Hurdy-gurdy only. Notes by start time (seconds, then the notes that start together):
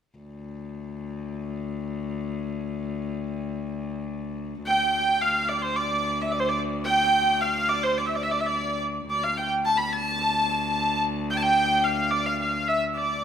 4.67 G5
5.22 F5
5.49 D5
5.58 D5
5.62 C5
5.76 D5
6.22 E5
6.32 D5
6.40 C5
6.49 D5
6.85 G5
7.41 F5
7.69 D5
7.84 C5
7.98 D5
8.06 E5
8.16 D5
8.23 E5
8.31 D5
8.40 E5
8.47 D5
9.10 D5
9.24 F5
9.37 G5
9.65 A5
9.78 B5
9.93 A5
10.21 A5
11.30 G5
11.37 A5
11.43 G5
11.84 F5
12.11 D5
12.26 F5
12.40 F5
12.68 E5
12.97 D5